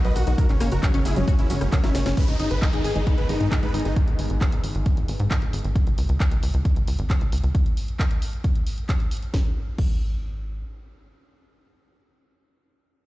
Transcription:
Already playing: analog synth pad D#3 A#3 B3 F#4
0.05 analog synth bass B1, synth arpeggio sound F#3, supersaw synth B4 D#5, closed hi-hat
0.16 analog synth bass B1, supersaw synth F#4, open hi-hat, shaker
0.27 analog synth bass B1, synth arpeggio sound D#4, supersaw synth F#4, closed hi-hat, shaker
0.38 analog synth pad C#3 G#3, synth arpeggio sound F#3, supersaw synth F#4 A#4, kick, closed hi-hat, shaker
0.49 analog synth bass F#1, supersaw synth C#4, clap, closed hi-hat, shaker
0.60 analog synth bass F#1, synth arpeggio sound A#3, supersaw synth C#4, cross-stick, open hi-hat, shaker
0.72 analog synth bass F#1, supersaw synth F#4 A#4, closed hi-hat, shaker
0.83 synth arpeggio sound F#3, supersaw synth C#4, kick, clap, closed hi-hat, shaker
0.94 analog synth bass F#1, synth arpeggio sound C#4, supersaw synth C#4, closed hi-hat
1.05 analog synth bass F#1, supersaw synth E4 G#4, open hi-hat, shaker
1.16 analog synth bass F#1, synth arpeggio sound F#3, supersaw synth C#4, closed hi-hat, shaker
1.28 supersaw synth C#4, synth arpeggio sound F#4, kick, closed hi-hat, shaker
1.39 analog synth bass F#1, supersaw synth C#4 E4, closed hi-hat, shaker
1.50 analog synth bass G#1, synth arpeggio sound F#3, supersaw synth C#4, open hi-hat, shaker
1.61 analog synth bass F#1, supersaw synth C#4, cross-stick, closed hi-hat, shaker
1.72 synth arpeggio sound A#3, supersaw synth C#4, kick, clap, closed hi-hat, shaker
1.84 analog synth bass F#1, synth arpeggio sound F#3, supersaw synth C#4 E4, snare, closed hi-hat, shaker
1.95 analog synth bass F#1, supersaw synth C#4, snare, open hi-hat, shaker
2.06 analog synth bass F#1, supersaw synth C#4, synth arpeggio sound C#4, snare, closed hi-hat, shaker
2.17 analog synth pad D#3 G#3 B3 G#4, synth arpeggio sound G#3, supersaw synth B4, kick, closed hi-hat, crash, downlifter
2.28 analog synth bass G#1, supersaw synth D#4, closed hi-hat
2.40 analog synth bass G#1, synth arpeggio sound D#4, supersaw synth D#4, open hi-hat
2.51 analog synth bass G#1, supersaw synth B4, closed hi-hat
2.62 synth arpeggio sound G#3, supersaw synth D#4, kick, clap, closed hi-hat
2.73 analog synth bass G#1, supersaw synth D#4, synth arpeggio sound G#4, closed hi-hat
2.84 analog synth bass G#1, supersaw synth G#4, open hi-hat
2.95 analog synth bass G#1, synth arpeggio sound G#3, supersaw synth D#4, closed hi-hat
3.07 supersaw synth D#4, synth arpeggio sound B4, kick, closed hi-hat
3.18 analog synth bass G#1, supersaw synth B4, closed hi-hat
3.29 analog synth bass G#1, synth arpeggio sound G#3, supersaw synth D#4, open hi-hat
3.40 analog synth bass G#2, supersaw synth D#4, closed hi-hat
3.51 supersaw synth D#4, synth arpeggio sound D#4, kick, clap, closed hi-hat
3.63 analog synth bass G#1, synth arpeggio sound G#3, supersaw synth B4, closed hi-hat
3.74 analog synth bass G#1, supersaw synth D#4, open hi-hat
3.80 closed hi-hat
3.85 analog synth bass G#1, supersaw synth D#4, synth arpeggio sound G#4, closed hi-hat
3.96 kick, closed hi-hat
4.08 analog synth bass G#1, closed hi-hat
4.19 analog synth bass G#1, open hi-hat
4.30 analog synth bass G#1, closed hi-hat
4.41 kick, clap, closed hi-hat
4.52 analog synth bass G#1, closed hi-hat
4.64 analog synth bass G#1, open hi-hat
4.75 analog synth bass G#1, closed hi-hat
4.86 kick, closed hi-hat
4.97 analog synth bass G#1, closed hi-hat
5.08 analog synth bass G#1, open hi-hat
5.20 analog synth bass G#2, closed hi-hat
5.31 kick, clap, closed hi-hat
5.42 analog synth bass G#1, closed hi-hat
5.53 analog synth bass G#1, open hi-hat
5.59 closed hi-hat
5.64 analog synth bass G#1, closed hi-hat
5.76 kick, closed hi-hat
5.87 analog synth bass C#2, closed hi-hat
5.98 analog synth bass C#2, open hi-hat
6.09 analog synth bass C#2, closed hi-hat
6.20 kick, clap, closed hi-hat
6.32 analog synth bass C#2, closed hi-hat
6.43 analog synth bass C#2, open hi-hat
6.54 analog synth bass C#2, closed hi-hat
6.65 kick, closed hi-hat
6.76 analog synth bass C#2, closed hi-hat
6.88 analog synth bass C#2, open hi-hat
6.99 analog synth bass G#1, closed hi-hat
7.10 kick, clap, closed hi-hat
7.21 analog synth bass C#2, closed hi-hat
7.32 analog synth bass C#2, open hi-hat
7.38 closed hi-hat
7.44 analog synth bass C#2, closed hi-hat
7.55 kick, closed hi-hat
7.66 closed hi-hat
7.77 open hi-hat
7.88 closed hi-hat
7.99 kick, clap, closed hi-hat
8.11 closed hi-hat
8.22 open hi-hat
8.33 closed hi-hat
8.44 kick, closed hi-hat
8.56 closed hi-hat
8.67 open hi-hat
8.78 closed hi-hat
8.89 kick, clap, closed hi-hat
9.00 closed hi-hat
9.11 open hi-hat
9.17 closed hi-hat
9.22 closed hi-hat
9.34 analog synth bass G#1, kick, snare
9.78 analog synth bass G#1, kick, crash

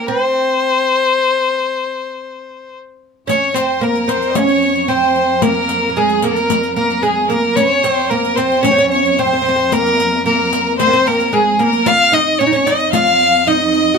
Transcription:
0.07 oud C4, violin C5
3.27 cello F2, oud C#4, violin section C#5, violin C#5, riq
3.54 oud C4, violin C5, violin section C5, riq
3.81 oud A#3, violin A#4, violin section A#4, riq
3.95 riq
4.08 oud C4, violin C5, riq
4.22 riq
4.29 violin section D#5
4.35 oud C#4, violin C#5, violin section C#5, riq
4.48 riq
4.62 riq
4.76 riq
4.88 oud C4, violin C5, violin section C5, riq
5.16 riq
5.42 oud A#3, violin A#4, violin section A#4, riq
5.69 riq
5.89 oud A#3
5.96 oud G#3, violin G#4, violin section G#4, riq
6.09 riq
6.22 oud A#3, violin section A#4, violin A#4, riq
6.36 riq
6.50 riq
6.63 riq
6.76 oud A#3, violin A#4, violin section A#4, riq
6.90 riq
7.02 oud G#3, violin G#4, violin section G#4, riq
7.29 oud A#3, violin A#4, violin section A#4, riq
7.55 cello F2, oud C#4, violin C#5, violin section C#5, riq
7.83 oud C4, violin C5, riq
8.09 oud A#3, violin section A#4, violin A#4, riq
8.25 riq
8.36 oud C4, violin C5, violin section C5, riq
8.52 riq
8.63 oud C#4, violin C#5, violin section C#5, riq
8.71 oud C4
8.78 oud C#4, riq
8.90 violin C#5, violin section C#5, riq
9.05 riq
9.18 oud C4, violin section C5, violin C5, riq
9.27 oud C4
9.33 oud C4
9.42 oud C4, riq
9.49 oud C4
9.56 oud C4
9.71 oud A#3, violin section A#4, violin A#4, riq
9.86 riq
10.00 riq
10.24 oud A#3, violin section A#4, violin A#4, riq
10.53 riq
10.79 oud C4, violin section C5, violin C5, riq
10.87 oud A#3
10.93 oud C4, riq
11.06 oud A#3, violin section A#4, violin A#4, riq
11.20 riq
11.33 oud G#3, violin G#4, violin section G#4, riq
11.59 oud A#3, violin A#4, violin section A#4, riq
11.73 riq
11.86 cello F2, oud F4, violin F5, violin section F5, riq
12.12 oud D#4, violin D#5, violin section D#5, riq
12.39 oud C#4, violin C#5, violin section C#5, riq
12.47 oud D#4
12.53 oud C#4, riq
12.67 oud D#4, violin D#5, violin section D#5, riq
12.80 riq
12.92 oud F4, violin F5, violin section F5, riq
13.06 riq
13.20 riq
13.34 riq
13.47 oud D#4, violin D#5, violin section D#5, riq
13.74 riq
13.94 oud F#4

